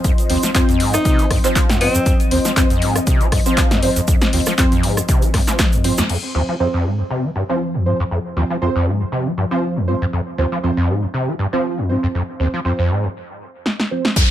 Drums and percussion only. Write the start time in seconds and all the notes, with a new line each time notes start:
0.04 kick, closed hi-hat, shaker
0.18 closed hi-hat, shaker
0.30 open hi-hat
0.43 snare, closed hi-hat, shaker
0.55 kick, clap, closed hi-hat, shaker
0.69 closed hi-hat, shaker
0.80 open hi-hat
0.94 cross-stick, closed hi-hat, shaker
1.05 kick, closed hi-hat, shaker
1.19 closed hi-hat, shaker
1.30 kick, cross-stick, open hi-hat
1.44 clap, closed hi-hat, shaker
1.56 kick, clap, closed hi-hat, shaker
1.70 snare, closed hi-hat, shaker
1.81 open hi-hat
1.95 closed hi-hat, shaker
2.06 kick, closed hi-hat, shaker
2.20 closed hi-hat, shaker
2.31 open hi-hat
2.45 snare, closed hi-hat, shaker
2.56 kick, clap, closed hi-hat, shaker
2.70 closed hi-hat, shaker
2.82 open hi-hat
2.96 cross-stick, closed hi-hat, shaker
3.07 kick, closed hi-hat, shaker
3.21 closed hi-hat, shaker
3.32 kick, cross-stick, open hi-hat
3.46 closed hi-hat, shaker
3.57 kick, clap, closed hi-hat, shaker
3.71 snare, closed hi-hat, shaker
3.83 open hi-hat
3.96 closed hi-hat, shaker
4.08 kick, closed hi-hat, shaker
4.21 snare, closed hi-hat, shaker
4.33 open hi-hat
4.46 cross-stick, snare, closed hi-hat, shaker
4.58 kick, clap, closed hi-hat, shaker
4.72 closed hi-hat, shaker
4.83 open hi-hat
4.97 cross-stick, closed hi-hat, shaker
5.09 kick, closed hi-hat, shaker
5.22 closed hi-hat, shaker
5.34 kick, cross-stick, snare, open hi-hat
5.48 snare, clap, closed hi-hat, shaker
5.59 kick, snare, clap, closed hi-hat, shaker
5.73 closed hi-hat, shaker
5.84 open hi-hat
5.98 snare, closed hi-hat, shaker
6.09 crash
13.66 snare
13.80 snare
14.05 snare
14.16 kick, closed hi-hat, shaker